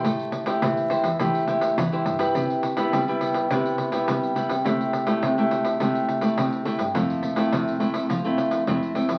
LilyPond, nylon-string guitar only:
\new Staff \with { instrumentName = "Nylon-string guitar" } { \time 4/4 \key a \minor \tempo 4 = 104 << { <e' g' c''>8. <e' g' c''>8. <e' g' c''>16 r16 <e' g' c''>8 <e' g' c''>8 r16 <e' g' c''>8 <e' g' b'>16~ | \key c \major <e' g' b'>8. <b e' g'>8 <b e' g'>8. <b e' g'>8. <b e' g'>8. <b e' g'>16 r16 | <a e' g'>8. <a e' g'>8 <a e' g'>8. <a e' g'>8. <a e' g'>8. <a e' g'>16 r16 | <a c' e'>8. <a c' e'>8. <a c' e'>8. <a c' e'>8. <a c' e'>8 <a c' e'>16 r16 | } \\ { a4 e4 a4 e4 | c4 g4 c4 g4 | c4 c4 c4 c4 | f4 c4 f4 c4 | } >> }